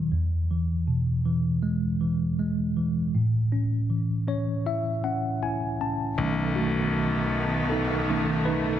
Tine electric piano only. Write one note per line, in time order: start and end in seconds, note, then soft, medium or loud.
0.00 0.13 D#3 soft
0.00 0.13 F#3 soft
0.12 3.11 E2 medium
0.51 1.24 E3 soft
0.87 2.35 B2 soft
1.25 2.00 E3 soft
1.63 2.38 G#3 medium
2.01 2.76 E3 soft
2.39 3.13 G#3 soft
2.77 3.14 E3 soft
3.15 6.14 A2 medium
3.52 4.26 C#4 soft
3.90 5.38 E3 soft
4.27 5.03 C#4 soft
4.27 4.64 C#5 medium
4.66 5.41 E4 soft
4.66 5.02 E5 medium
5.04 5.80 C#4 soft
5.04 5.40 F#5 medium
5.43 6.16 E4 soft
5.43 5.78 G#5 medium
5.81 6.17 C#4 soft
5.81 6.16 A5 medium
6.18 6.69 D#3 soft
6.18 6.57 A3 soft
6.18 6.69 C#4 soft
6.56 7.67 A3 medium
6.56 7.66 F#4 medium
7.70 8.43 D#4 medium
7.70 8.48 A4 medium
8.09 8.43 D#3 soft
8.09 8.43 A3 soft
8.09 8.43 C#4 soft
8.45 8.80 D#4 medium
8.45 8.80 B4 medium